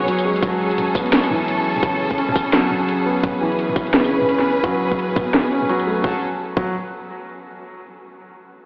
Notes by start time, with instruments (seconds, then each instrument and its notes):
Already playing: felt piano F#2 C#3 F#3 B3 F#4, string section F#3 C#4 G#4 C#5
0.01 mid tom
0.06 felt piano F#3, closed hi-hat, mid tom
0.18 tambourine
0.25 felt piano G#3
0.36 closed hi-hat
0.43 felt piano F#3, string section A4, kick, closed hi-hat
0.71 closed hi-hat
0.78 closed hi-hat, mid tom
0.95 felt piano B3, kick, tambourine
1.06 closed hi-hat
1.13 snare, closed hi-hat
1.23 tambourine
1.31 felt piano E3, mid tom
1.48 closed hi-hat
1.76 closed hi-hat, mid tom
1.83 felt piano C#3, kick, closed hi-hat
2.11 kick, closed hi-hat
2.18 felt piano C#4, closed hi-hat
2.29 mid tom
2.36 kick, tambourine
2.46 closed hi-hat
2.53 felt piano F#3, snare, closed hi-hat
2.71 mid tom
2.89 closed hi-hat
3.06 felt piano B3
3.20 kick, closed hi-hat
3.24 string section B4, closed hi-hat, mid tom
3.41 felt piano E3
3.52 closed hi-hat
3.59 closed hi-hat
3.69 mid tom
3.76 kick, tambourine
3.87 closed hi-hat
3.94 felt piano C#3, snare, closed hi-hat
4.04 tambourine
4.22 mid tom
4.29 felt piano C#4, closed hi-hat
4.39 snare
4.57 closed hi-hat
4.64 felt piano F#3, kick, closed hi-hat, mid tom
4.92 kick, closed hi-hat
4.99 closed hi-hat
5.16 felt piano B3, kick, mid tom, tambourine
5.27 closed hi-hat
5.34 snare, closed hi-hat
5.52 felt piano C#4
5.62 mid tom
5.69 felt piano F#3, closed hi-hat
5.79 tambourine
5.87 felt piano A3
5.97 closed hi-hat
6.04 string section F#3 C#4 G#4 A4, felt piano F#3, kick
6.57 felt piano F#3, kick